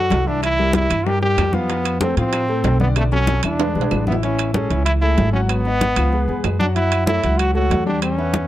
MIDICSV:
0, 0, Header, 1, 5, 480
1, 0, Start_track
1, 0, Key_signature, 3, "major"
1, 0, Tempo, 316623
1, 647, Time_signature, 4, 2, 24, 8
1, 12847, End_track
2, 0, Start_track
2, 0, Title_t, "Grand piano"
2, 0, Program_c, 0, 0
2, 0, Note_on_c, 0, 54, 66
2, 0, Note_on_c, 0, 66, 57
2, 0, Note_on_c, 0, 69, 62
2, 326, Note_off_c, 0, 54, 0
2, 328, Note_off_c, 0, 66, 0
2, 332, Note_off_c, 0, 69, 0
2, 409, Note_on_c, 0, 52, 83
2, 411, Note_on_c, 0, 64, 84
2, 419, Note_on_c, 0, 76, 81
2, 802, Note_off_c, 0, 52, 0
2, 803, Note_off_c, 0, 64, 0
2, 808, Note_off_c, 0, 76, 0
2, 899, Note_on_c, 0, 67, 73
2, 904, Note_on_c, 0, 55, 72
2, 905, Note_on_c, 0, 70, 69
2, 1288, Note_off_c, 0, 67, 0
2, 1290, Note_off_c, 0, 55, 0
2, 1291, Note_off_c, 0, 70, 0
2, 1370, Note_on_c, 0, 52, 64
2, 1375, Note_on_c, 0, 76, 66
2, 1376, Note_on_c, 0, 64, 78
2, 1566, Note_off_c, 0, 52, 0
2, 1568, Note_off_c, 0, 76, 0
2, 1569, Note_off_c, 0, 64, 0
2, 1611, Note_on_c, 0, 55, 67
2, 1612, Note_on_c, 0, 67, 64
2, 1614, Note_on_c, 0, 70, 63
2, 1806, Note_off_c, 0, 55, 0
2, 1807, Note_off_c, 0, 67, 0
2, 1808, Note_off_c, 0, 70, 0
2, 1850, Note_on_c, 0, 55, 58
2, 1856, Note_on_c, 0, 67, 60
2, 1858, Note_on_c, 0, 70, 66
2, 2242, Note_off_c, 0, 55, 0
2, 2246, Note_off_c, 0, 67, 0
2, 2247, Note_off_c, 0, 70, 0
2, 2326, Note_on_c, 0, 53, 87
2, 2330, Note_on_c, 0, 65, 88
2, 2336, Note_on_c, 0, 77, 80
2, 2523, Note_off_c, 0, 53, 0
2, 2525, Note_off_c, 0, 65, 0
2, 2529, Note_off_c, 0, 77, 0
2, 2571, Note_on_c, 0, 53, 75
2, 2571, Note_on_c, 0, 65, 82
2, 2579, Note_on_c, 0, 77, 69
2, 2963, Note_off_c, 0, 53, 0
2, 2963, Note_off_c, 0, 65, 0
2, 2968, Note_off_c, 0, 77, 0
2, 3050, Note_on_c, 0, 57, 67
2, 3059, Note_on_c, 0, 69, 68
2, 3066, Note_on_c, 0, 72, 66
2, 3246, Note_off_c, 0, 57, 0
2, 3251, Note_off_c, 0, 69, 0
2, 3255, Note_off_c, 0, 72, 0
2, 3295, Note_on_c, 0, 53, 69
2, 3306, Note_on_c, 0, 65, 75
2, 3307, Note_on_c, 0, 77, 70
2, 3685, Note_off_c, 0, 53, 0
2, 3692, Note_off_c, 0, 65, 0
2, 3693, Note_off_c, 0, 77, 0
2, 3776, Note_on_c, 0, 57, 63
2, 3782, Note_on_c, 0, 69, 71
2, 3787, Note_on_c, 0, 72, 68
2, 4166, Note_off_c, 0, 57, 0
2, 4169, Note_off_c, 0, 69, 0
2, 4172, Note_off_c, 0, 72, 0
2, 4247, Note_on_c, 0, 50, 78
2, 4251, Note_on_c, 0, 62, 83
2, 4257, Note_on_c, 0, 74, 79
2, 4641, Note_off_c, 0, 50, 0
2, 4643, Note_off_c, 0, 62, 0
2, 4646, Note_off_c, 0, 74, 0
2, 4732, Note_on_c, 0, 54, 75
2, 4740, Note_on_c, 0, 66, 74
2, 4742, Note_on_c, 0, 69, 70
2, 5123, Note_off_c, 0, 54, 0
2, 5128, Note_off_c, 0, 66, 0
2, 5129, Note_off_c, 0, 69, 0
2, 5215, Note_on_c, 0, 52, 68
2, 5224, Note_on_c, 0, 64, 75
2, 5228, Note_on_c, 0, 76, 74
2, 5408, Note_off_c, 0, 52, 0
2, 5414, Note_off_c, 0, 64, 0
2, 5416, Note_off_c, 0, 76, 0
2, 5454, Note_on_c, 0, 56, 64
2, 5460, Note_on_c, 0, 68, 62
2, 5461, Note_on_c, 0, 71, 63
2, 5648, Note_off_c, 0, 56, 0
2, 5651, Note_off_c, 0, 68, 0
2, 5652, Note_off_c, 0, 71, 0
2, 5701, Note_on_c, 0, 56, 61
2, 5702, Note_on_c, 0, 68, 64
2, 5704, Note_on_c, 0, 71, 63
2, 6089, Note_off_c, 0, 56, 0
2, 6089, Note_off_c, 0, 68, 0
2, 6090, Note_off_c, 0, 71, 0
2, 6182, Note_on_c, 0, 64, 78
2, 6183, Note_on_c, 0, 52, 82
2, 6188, Note_on_c, 0, 76, 82
2, 6372, Note_off_c, 0, 64, 0
2, 6373, Note_off_c, 0, 52, 0
2, 6376, Note_off_c, 0, 76, 0
2, 6426, Note_on_c, 0, 64, 83
2, 6431, Note_on_c, 0, 52, 69
2, 6433, Note_on_c, 0, 76, 78
2, 6812, Note_off_c, 0, 64, 0
2, 6815, Note_off_c, 0, 52, 0
2, 6816, Note_off_c, 0, 76, 0
2, 6901, Note_on_c, 0, 56, 62
2, 6907, Note_on_c, 0, 68, 68
2, 6910, Note_on_c, 0, 69, 66
2, 7092, Note_off_c, 0, 56, 0
2, 7095, Note_off_c, 0, 68, 0
2, 7097, Note_off_c, 0, 69, 0
2, 7137, Note_on_c, 0, 52, 71
2, 7142, Note_on_c, 0, 64, 70
2, 7146, Note_on_c, 0, 76, 68
2, 7526, Note_off_c, 0, 52, 0
2, 7529, Note_off_c, 0, 64, 0
2, 7532, Note_off_c, 0, 76, 0
2, 7615, Note_on_c, 0, 57, 69
2, 7618, Note_on_c, 0, 68, 71
2, 7623, Note_on_c, 0, 69, 69
2, 8005, Note_off_c, 0, 57, 0
2, 8007, Note_off_c, 0, 68, 0
2, 8010, Note_off_c, 0, 69, 0
2, 8087, Note_on_c, 0, 54, 84
2, 8093, Note_on_c, 0, 66, 88
2, 8096, Note_on_c, 0, 78, 75
2, 8480, Note_off_c, 0, 54, 0
2, 8484, Note_off_c, 0, 66, 0
2, 8486, Note_off_c, 0, 78, 0
2, 8584, Note_on_c, 0, 59, 71
2, 8586, Note_on_c, 0, 71, 73
2, 8597, Note_on_c, 0, 75, 72
2, 8971, Note_off_c, 0, 59, 0
2, 8971, Note_off_c, 0, 71, 0
2, 8978, Note_off_c, 0, 75, 0
2, 9054, Note_on_c, 0, 53, 77
2, 9061, Note_on_c, 0, 65, 73
2, 9062, Note_on_c, 0, 77, 70
2, 9248, Note_off_c, 0, 53, 0
2, 9252, Note_off_c, 0, 65, 0
2, 9252, Note_off_c, 0, 77, 0
2, 9291, Note_on_c, 0, 56, 60
2, 9300, Note_on_c, 0, 68, 63
2, 9306, Note_on_c, 0, 71, 67
2, 9486, Note_off_c, 0, 56, 0
2, 9491, Note_off_c, 0, 68, 0
2, 9494, Note_off_c, 0, 71, 0
2, 9527, Note_on_c, 0, 56, 61
2, 9529, Note_on_c, 0, 68, 65
2, 9531, Note_on_c, 0, 71, 66
2, 9920, Note_off_c, 0, 56, 0
2, 9921, Note_off_c, 0, 68, 0
2, 9922, Note_off_c, 0, 71, 0
2, 10001, Note_on_c, 0, 54, 85
2, 10005, Note_on_c, 0, 66, 79
2, 10007, Note_on_c, 0, 78, 84
2, 10200, Note_off_c, 0, 54, 0
2, 10202, Note_off_c, 0, 66, 0
2, 10204, Note_off_c, 0, 78, 0
2, 10250, Note_on_c, 0, 54, 74
2, 10250, Note_on_c, 0, 66, 79
2, 10252, Note_on_c, 0, 78, 76
2, 10642, Note_off_c, 0, 54, 0
2, 10642, Note_off_c, 0, 66, 0
2, 10643, Note_off_c, 0, 78, 0
2, 10723, Note_on_c, 0, 57, 63
2, 10729, Note_on_c, 0, 69, 64
2, 10729, Note_on_c, 0, 73, 68
2, 10921, Note_off_c, 0, 57, 0
2, 10925, Note_off_c, 0, 69, 0
2, 10925, Note_off_c, 0, 73, 0
2, 10969, Note_on_c, 0, 54, 66
2, 10972, Note_on_c, 0, 66, 70
2, 10976, Note_on_c, 0, 78, 81
2, 11361, Note_off_c, 0, 54, 0
2, 11363, Note_off_c, 0, 66, 0
2, 11366, Note_off_c, 0, 78, 0
2, 11438, Note_on_c, 0, 57, 68
2, 11441, Note_on_c, 0, 69, 67
2, 11446, Note_on_c, 0, 73, 60
2, 11835, Note_off_c, 0, 57, 0
2, 11837, Note_off_c, 0, 69, 0
2, 11839, Note_off_c, 0, 73, 0
2, 11920, Note_on_c, 0, 55, 76
2, 11922, Note_on_c, 0, 67, 83
2, 11930, Note_on_c, 0, 79, 86
2, 12316, Note_off_c, 0, 55, 0
2, 12317, Note_off_c, 0, 67, 0
2, 12322, Note_off_c, 0, 79, 0
2, 12403, Note_on_c, 0, 59, 79
2, 12405, Note_on_c, 0, 71, 68
2, 12416, Note_on_c, 0, 76, 75
2, 12798, Note_off_c, 0, 59, 0
2, 12799, Note_off_c, 0, 71, 0
2, 12805, Note_off_c, 0, 76, 0
2, 12847, End_track
3, 0, Start_track
3, 0, Title_t, "Trombone"
3, 0, Program_c, 1, 57
3, 0, Note_on_c, 1, 66, 91
3, 415, Note_on_c, 1, 62, 86
3, 438, Note_off_c, 1, 66, 0
3, 651, Note_off_c, 1, 62, 0
3, 659, Note_on_c, 1, 64, 102
3, 1100, Note_off_c, 1, 64, 0
3, 1147, Note_on_c, 1, 64, 96
3, 1624, Note_on_c, 1, 67, 100
3, 1646, Note_off_c, 1, 64, 0
3, 1848, Note_off_c, 1, 67, 0
3, 1857, Note_on_c, 1, 67, 96
3, 2343, Note_on_c, 1, 59, 93
3, 2366, Note_off_c, 1, 67, 0
3, 3050, Note_off_c, 1, 59, 0
3, 3059, Note_on_c, 1, 60, 84
3, 3277, Note_off_c, 1, 60, 0
3, 3301, Note_on_c, 1, 60, 88
3, 4193, Note_off_c, 1, 60, 0
3, 4260, Note_on_c, 1, 59, 80
3, 4365, Note_off_c, 1, 59, 0
3, 4506, Note_on_c, 1, 57, 81
3, 4610, Note_off_c, 1, 57, 0
3, 4741, Note_on_c, 1, 61, 94
3, 5180, Note_off_c, 1, 61, 0
3, 5219, Note_on_c, 1, 62, 79
3, 6112, Note_off_c, 1, 62, 0
3, 6174, Note_on_c, 1, 59, 69
3, 6280, Note_off_c, 1, 59, 0
3, 6416, Note_on_c, 1, 61, 79
3, 6858, Note_off_c, 1, 61, 0
3, 6875, Note_on_c, 1, 61, 77
3, 7327, Note_off_c, 1, 61, 0
3, 7359, Note_on_c, 1, 64, 92
3, 7469, Note_off_c, 1, 64, 0
3, 7600, Note_on_c, 1, 64, 89
3, 8049, Note_off_c, 1, 64, 0
3, 8078, Note_on_c, 1, 61, 82
3, 8188, Note_off_c, 1, 61, 0
3, 8326, Note_on_c, 1, 59, 97
3, 9706, Note_off_c, 1, 59, 0
3, 9993, Note_on_c, 1, 62, 91
3, 10104, Note_off_c, 1, 62, 0
3, 10239, Note_on_c, 1, 64, 98
3, 10689, Note_off_c, 1, 64, 0
3, 10707, Note_on_c, 1, 64, 98
3, 11188, Note_on_c, 1, 66, 109
3, 11211, Note_off_c, 1, 64, 0
3, 11428, Note_off_c, 1, 66, 0
3, 11437, Note_on_c, 1, 66, 97
3, 11888, Note_off_c, 1, 66, 0
3, 11924, Note_on_c, 1, 62, 94
3, 12148, Note_off_c, 1, 62, 0
3, 12164, Note_on_c, 1, 61, 85
3, 12847, Note_off_c, 1, 61, 0
3, 12847, End_track
4, 0, Start_track
4, 0, Title_t, "Upright bass"
4, 0, Program_c, 2, 32
4, 174, Note_on_c, 2, 36, 87
4, 1286, Note_off_c, 2, 36, 0
4, 1370, Note_on_c, 2, 43, 94
4, 2038, Note_off_c, 2, 43, 0
4, 2085, Note_on_c, 2, 41, 85
4, 3201, Note_off_c, 2, 41, 0
4, 3289, Note_on_c, 2, 45, 83
4, 3957, Note_off_c, 2, 45, 0
4, 4003, Note_on_c, 2, 35, 95
4, 5120, Note_off_c, 2, 35, 0
4, 5208, Note_on_c, 2, 40, 78
4, 5654, Note_off_c, 2, 40, 0
4, 5689, Note_on_c, 2, 35, 69
4, 5911, Note_off_c, 2, 35, 0
4, 5930, Note_on_c, 2, 33, 91
4, 7044, Note_off_c, 2, 33, 0
4, 7130, Note_on_c, 2, 37, 85
4, 7798, Note_off_c, 2, 37, 0
4, 7845, Note_on_c, 2, 32, 87
4, 8961, Note_off_c, 2, 32, 0
4, 9042, Note_on_c, 2, 37, 80
4, 9490, Note_off_c, 2, 37, 0
4, 9515, Note_on_c, 2, 41, 71
4, 9743, Note_off_c, 2, 41, 0
4, 9763, Note_on_c, 2, 42, 84
4, 10880, Note_off_c, 2, 42, 0
4, 10971, Note_on_c, 2, 37, 84
4, 11638, Note_off_c, 2, 37, 0
4, 11679, Note_on_c, 2, 40, 87
4, 12798, Note_off_c, 2, 40, 0
4, 12847, End_track
5, 0, Start_track
5, 0, Title_t, "Drums"
5, 157, Note_on_c, 9, 63, 79
5, 169, Note_on_c, 9, 60, 70
5, 169, Note_on_c, 9, 61, 80
5, 179, Note_on_c, 9, 65, 59
5, 179, Note_on_c, 9, 66, 72
5, 309, Note_off_c, 9, 63, 0
5, 320, Note_off_c, 9, 60, 0
5, 320, Note_off_c, 9, 61, 0
5, 331, Note_off_c, 9, 65, 0
5, 331, Note_off_c, 9, 66, 0
5, 408, Note_on_c, 9, 60, 31
5, 560, Note_off_c, 9, 60, 0
5, 641, Note_on_c, 9, 63, 31
5, 649, Note_on_c, 9, 60, 55
5, 653, Note_on_c, 9, 75, 58
5, 660, Note_on_c, 9, 65, 84
5, 793, Note_off_c, 9, 63, 0
5, 801, Note_off_c, 9, 60, 0
5, 805, Note_off_c, 9, 75, 0
5, 812, Note_off_c, 9, 65, 0
5, 884, Note_on_c, 9, 63, 32
5, 896, Note_on_c, 9, 60, 34
5, 1036, Note_off_c, 9, 63, 0
5, 1048, Note_off_c, 9, 60, 0
5, 1111, Note_on_c, 9, 63, 97
5, 1134, Note_on_c, 9, 60, 58
5, 1134, Note_on_c, 9, 65, 58
5, 1134, Note_on_c, 9, 66, 48
5, 1263, Note_off_c, 9, 63, 0
5, 1285, Note_off_c, 9, 60, 0
5, 1286, Note_off_c, 9, 65, 0
5, 1286, Note_off_c, 9, 66, 0
5, 1361, Note_on_c, 9, 63, 32
5, 1368, Note_on_c, 9, 75, 68
5, 1373, Note_on_c, 9, 60, 32
5, 1374, Note_on_c, 9, 65, 88
5, 1512, Note_off_c, 9, 63, 0
5, 1519, Note_off_c, 9, 75, 0
5, 1524, Note_off_c, 9, 60, 0
5, 1525, Note_off_c, 9, 65, 0
5, 1613, Note_on_c, 9, 63, 31
5, 1615, Note_on_c, 9, 60, 67
5, 1764, Note_off_c, 9, 63, 0
5, 1767, Note_off_c, 9, 60, 0
5, 1849, Note_on_c, 9, 63, 33
5, 2000, Note_off_c, 9, 63, 0
5, 2080, Note_on_c, 9, 63, 33
5, 2091, Note_on_c, 9, 75, 66
5, 2093, Note_on_c, 9, 65, 82
5, 2093, Note_on_c, 9, 66, 75
5, 2097, Note_on_c, 9, 60, 67
5, 2097, Note_on_c, 9, 61, 82
5, 2232, Note_off_c, 9, 63, 0
5, 2243, Note_off_c, 9, 75, 0
5, 2244, Note_off_c, 9, 65, 0
5, 2244, Note_off_c, 9, 66, 0
5, 2248, Note_off_c, 9, 60, 0
5, 2248, Note_off_c, 9, 61, 0
5, 2317, Note_on_c, 9, 63, 83
5, 2338, Note_on_c, 9, 60, 32
5, 2469, Note_off_c, 9, 63, 0
5, 2490, Note_off_c, 9, 60, 0
5, 2558, Note_on_c, 9, 63, 34
5, 2570, Note_on_c, 9, 60, 60
5, 2571, Note_on_c, 9, 65, 66
5, 2709, Note_off_c, 9, 63, 0
5, 2721, Note_off_c, 9, 60, 0
5, 2723, Note_off_c, 9, 65, 0
5, 2794, Note_on_c, 9, 63, 34
5, 2808, Note_on_c, 9, 75, 58
5, 2812, Note_on_c, 9, 65, 88
5, 2818, Note_on_c, 9, 60, 33
5, 2946, Note_off_c, 9, 63, 0
5, 2960, Note_off_c, 9, 75, 0
5, 2964, Note_off_c, 9, 65, 0
5, 2970, Note_off_c, 9, 60, 0
5, 3042, Note_on_c, 9, 63, 100
5, 3047, Note_on_c, 9, 66, 57
5, 3048, Note_on_c, 9, 60, 61
5, 3194, Note_off_c, 9, 63, 0
5, 3199, Note_off_c, 9, 66, 0
5, 3200, Note_off_c, 9, 60, 0
5, 3288, Note_on_c, 9, 63, 34
5, 3293, Note_on_c, 9, 65, 68
5, 3440, Note_off_c, 9, 63, 0
5, 3444, Note_off_c, 9, 65, 0
5, 3527, Note_on_c, 9, 65, 92
5, 3530, Note_on_c, 9, 63, 34
5, 3534, Note_on_c, 9, 60, 66
5, 3538, Note_on_c, 9, 75, 60
5, 3678, Note_off_c, 9, 65, 0
5, 3682, Note_off_c, 9, 63, 0
5, 3686, Note_off_c, 9, 60, 0
5, 3689, Note_off_c, 9, 75, 0
5, 3766, Note_on_c, 9, 63, 33
5, 3774, Note_on_c, 9, 60, 34
5, 3918, Note_off_c, 9, 63, 0
5, 3926, Note_off_c, 9, 60, 0
5, 4001, Note_on_c, 9, 63, 84
5, 4008, Note_on_c, 9, 65, 61
5, 4008, Note_on_c, 9, 66, 75
5, 4016, Note_on_c, 9, 60, 68
5, 4016, Note_on_c, 9, 61, 83
5, 4152, Note_off_c, 9, 63, 0
5, 4160, Note_off_c, 9, 65, 0
5, 4160, Note_off_c, 9, 66, 0
5, 4167, Note_off_c, 9, 60, 0
5, 4167, Note_off_c, 9, 61, 0
5, 4242, Note_on_c, 9, 63, 70
5, 4255, Note_on_c, 9, 60, 35
5, 4394, Note_off_c, 9, 63, 0
5, 4407, Note_off_c, 9, 60, 0
5, 4486, Note_on_c, 9, 65, 89
5, 4491, Note_on_c, 9, 60, 92
5, 4492, Note_on_c, 9, 75, 60
5, 4638, Note_off_c, 9, 65, 0
5, 4643, Note_off_c, 9, 60, 0
5, 4643, Note_off_c, 9, 75, 0
5, 4724, Note_on_c, 9, 63, 36
5, 4730, Note_on_c, 9, 60, 84
5, 4875, Note_off_c, 9, 63, 0
5, 4882, Note_off_c, 9, 60, 0
5, 4961, Note_on_c, 9, 63, 87
5, 4968, Note_on_c, 9, 65, 62
5, 4968, Note_on_c, 9, 66, 57
5, 4969, Note_on_c, 9, 60, 87
5, 5113, Note_off_c, 9, 63, 0
5, 5120, Note_off_c, 9, 60, 0
5, 5120, Note_off_c, 9, 65, 0
5, 5120, Note_off_c, 9, 66, 0
5, 5197, Note_on_c, 9, 65, 96
5, 5201, Note_on_c, 9, 63, 31
5, 5212, Note_on_c, 9, 61, 78
5, 5213, Note_on_c, 9, 75, 65
5, 5349, Note_off_c, 9, 65, 0
5, 5353, Note_off_c, 9, 63, 0
5, 5363, Note_off_c, 9, 61, 0
5, 5365, Note_off_c, 9, 75, 0
5, 5445, Note_on_c, 9, 61, 95
5, 5447, Note_on_c, 9, 63, 31
5, 5451, Note_on_c, 9, 65, 88
5, 5597, Note_off_c, 9, 61, 0
5, 5598, Note_off_c, 9, 63, 0
5, 5603, Note_off_c, 9, 65, 0
5, 5688, Note_on_c, 9, 63, 33
5, 5694, Note_on_c, 9, 61, 89
5, 5778, Note_on_c, 9, 65, 97
5, 5840, Note_off_c, 9, 63, 0
5, 5846, Note_off_c, 9, 61, 0
5, 5929, Note_off_c, 9, 65, 0
5, 5929, Note_on_c, 9, 66, 68
5, 5933, Note_on_c, 9, 75, 64
5, 5937, Note_on_c, 9, 63, 36
5, 5938, Note_on_c, 9, 61, 101
5, 6081, Note_off_c, 9, 66, 0
5, 6085, Note_off_c, 9, 75, 0
5, 6089, Note_off_c, 9, 63, 0
5, 6090, Note_off_c, 9, 61, 0
5, 6169, Note_on_c, 9, 63, 73
5, 6176, Note_on_c, 9, 61, 70
5, 6248, Note_on_c, 9, 66, 80
5, 6321, Note_off_c, 9, 63, 0
5, 6328, Note_off_c, 9, 61, 0
5, 6400, Note_off_c, 9, 66, 0
5, 6413, Note_on_c, 9, 63, 31
5, 6416, Note_on_c, 9, 65, 64
5, 6564, Note_off_c, 9, 63, 0
5, 6567, Note_off_c, 9, 65, 0
5, 6647, Note_on_c, 9, 63, 35
5, 6650, Note_on_c, 9, 75, 61
5, 6658, Note_on_c, 9, 65, 95
5, 6799, Note_off_c, 9, 63, 0
5, 6801, Note_off_c, 9, 75, 0
5, 6809, Note_off_c, 9, 65, 0
5, 6887, Note_on_c, 9, 63, 92
5, 6894, Note_on_c, 9, 66, 54
5, 7038, Note_off_c, 9, 63, 0
5, 7046, Note_off_c, 9, 66, 0
5, 7132, Note_on_c, 9, 63, 32
5, 7133, Note_on_c, 9, 65, 65
5, 7283, Note_off_c, 9, 63, 0
5, 7285, Note_off_c, 9, 65, 0
5, 7370, Note_on_c, 9, 65, 98
5, 7373, Note_on_c, 9, 75, 57
5, 7374, Note_on_c, 9, 63, 32
5, 7521, Note_off_c, 9, 65, 0
5, 7524, Note_off_c, 9, 75, 0
5, 7526, Note_off_c, 9, 63, 0
5, 7614, Note_on_c, 9, 63, 33
5, 7766, Note_off_c, 9, 63, 0
5, 7848, Note_on_c, 9, 65, 58
5, 7848, Note_on_c, 9, 66, 75
5, 7852, Note_on_c, 9, 63, 81
5, 7999, Note_off_c, 9, 65, 0
5, 7999, Note_off_c, 9, 66, 0
5, 8004, Note_off_c, 9, 63, 0
5, 8328, Note_on_c, 9, 75, 65
5, 8329, Note_on_c, 9, 65, 88
5, 8330, Note_on_c, 9, 63, 33
5, 8479, Note_off_c, 9, 75, 0
5, 8480, Note_off_c, 9, 65, 0
5, 8481, Note_off_c, 9, 63, 0
5, 8571, Note_on_c, 9, 63, 37
5, 8722, Note_off_c, 9, 63, 0
5, 8809, Note_on_c, 9, 65, 65
5, 8809, Note_on_c, 9, 66, 53
5, 8813, Note_on_c, 9, 63, 91
5, 8961, Note_off_c, 9, 65, 0
5, 8961, Note_off_c, 9, 66, 0
5, 8965, Note_off_c, 9, 63, 0
5, 9041, Note_on_c, 9, 65, 101
5, 9051, Note_on_c, 9, 75, 69
5, 9054, Note_on_c, 9, 63, 31
5, 9193, Note_off_c, 9, 65, 0
5, 9202, Note_off_c, 9, 75, 0
5, 9205, Note_off_c, 9, 63, 0
5, 9288, Note_on_c, 9, 63, 34
5, 9439, Note_off_c, 9, 63, 0
5, 9534, Note_on_c, 9, 63, 33
5, 9686, Note_off_c, 9, 63, 0
5, 9763, Note_on_c, 9, 65, 74
5, 9763, Note_on_c, 9, 66, 79
5, 9765, Note_on_c, 9, 75, 64
5, 9775, Note_on_c, 9, 63, 34
5, 9915, Note_off_c, 9, 65, 0
5, 9915, Note_off_c, 9, 66, 0
5, 9917, Note_off_c, 9, 75, 0
5, 9927, Note_off_c, 9, 63, 0
5, 10017, Note_on_c, 9, 63, 75
5, 10169, Note_off_c, 9, 63, 0
5, 10245, Note_on_c, 9, 63, 34
5, 10248, Note_on_c, 9, 65, 64
5, 10396, Note_off_c, 9, 63, 0
5, 10400, Note_off_c, 9, 65, 0
5, 10485, Note_on_c, 9, 63, 35
5, 10488, Note_on_c, 9, 65, 97
5, 10492, Note_on_c, 9, 75, 65
5, 10637, Note_off_c, 9, 63, 0
5, 10639, Note_off_c, 9, 65, 0
5, 10644, Note_off_c, 9, 75, 0
5, 10721, Note_on_c, 9, 63, 90
5, 10729, Note_on_c, 9, 66, 54
5, 10873, Note_off_c, 9, 63, 0
5, 10880, Note_off_c, 9, 66, 0
5, 10958, Note_on_c, 9, 63, 34
5, 10969, Note_on_c, 9, 65, 67
5, 11110, Note_off_c, 9, 63, 0
5, 11120, Note_off_c, 9, 65, 0
5, 11208, Note_on_c, 9, 63, 32
5, 11209, Note_on_c, 9, 65, 84
5, 11209, Note_on_c, 9, 75, 65
5, 11360, Note_off_c, 9, 63, 0
5, 11360, Note_off_c, 9, 75, 0
5, 11361, Note_off_c, 9, 65, 0
5, 11451, Note_on_c, 9, 63, 35
5, 11602, Note_off_c, 9, 63, 0
5, 11691, Note_on_c, 9, 63, 77
5, 11692, Note_on_c, 9, 65, 63
5, 11692, Note_on_c, 9, 66, 75
5, 11842, Note_off_c, 9, 63, 0
5, 11844, Note_off_c, 9, 65, 0
5, 11844, Note_off_c, 9, 66, 0
5, 12160, Note_on_c, 9, 65, 87
5, 12167, Note_on_c, 9, 63, 34
5, 12167, Note_on_c, 9, 75, 68
5, 12312, Note_off_c, 9, 65, 0
5, 12318, Note_off_c, 9, 75, 0
5, 12319, Note_off_c, 9, 63, 0
5, 12410, Note_on_c, 9, 63, 35
5, 12562, Note_off_c, 9, 63, 0
5, 12638, Note_on_c, 9, 63, 101
5, 12638, Note_on_c, 9, 65, 68
5, 12638, Note_on_c, 9, 66, 58
5, 12789, Note_off_c, 9, 65, 0
5, 12789, Note_off_c, 9, 66, 0
5, 12790, Note_off_c, 9, 63, 0
5, 12847, End_track
0, 0, End_of_file